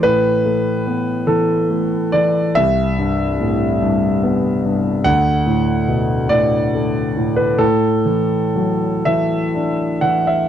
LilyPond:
<<
  \new Staff \with { instrumentName = "Grand piano" } { \time 6/8 \key a \dorian \tempo 4. = 47 b'4. a'4 d''8 | e''2. | fis''4. d''4~ d''16 b'16 | a'4. e''4 fis''16 e''16 | }
  \new Staff \with { instrumentName = "Grand piano" } { \clef bass \time 6/8 \key a \dorian <a, e>8 a8 b8 e8 a8 e8 | c,8 g,8 a,8 g,8 b8 g,8 | d,8 a,8 b,8 a,8 a8 a,8 | a,8 e8 fis8 e8 d'8 e8 | }
>>